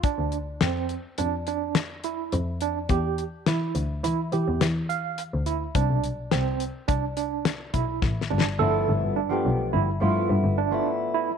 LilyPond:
<<
  \new Staff \with { instrumentName = "Tine electric piano" } { \time 5/4 \key g \mixolydian \tempo 4 = 105 d'4 c'4 d'8 d'4 e'4 d'8 | g'4 e'4 e'8 g'4 f''4 e'8 | d'4 c'4 d'8 d'4 e'4 d'8 | a'4 d'4 e'8 f'4 d'4 e'8 | }
  \new Staff \with { instrumentName = "Hollow-body jazz guitar" } { \time 5/4 \key g \mixolydian r1 r4 | r1 r4 | r1 r4 | <f a b e'>4 r16 <f a b g'>4 r16 <f a b e'>4 r16 <f a b e'>4 r16 | }
  \new Staff \with { instrumentName = "Double bass" } { \clef bass \time 5/4 \key g \mixolydian r16 d,8. f,8 r8 f,2 f,4 | e,8 r8 e16 r16 d,8 e8 e16 e,16 e4~ e16 d,8 r16 | c,16 b,,8. c,8 r8 c,4. b,,8 a,,8 g,,8 | g,,8 g,,16 g,8. b,,8 g,,16 r16 g,16 r16 g,16 g,,8 r4 r16 | }
  \new DrumStaff \with { instrumentName = "Drums" } \drummode { \time 5/4 <hh bd>8 hh8 <hh sn>8 hh8 hh8 hh8 <hh sn>8 hh8 hh8 hh8 | <hh bd>8 hh8 <hh sn>8 hh8 hh8 hh8 <hh sn>8 hh8 hh8 hh8 | <hh bd>8 hh8 <hh sn>8 hh8 <hh bd>8 hh8 <hh sn>8 <hh bd>8 \tuplet 3/2 { <bd sn>8 sn8 sn8 } | r4 r4 r4 r4 r4 | }
>>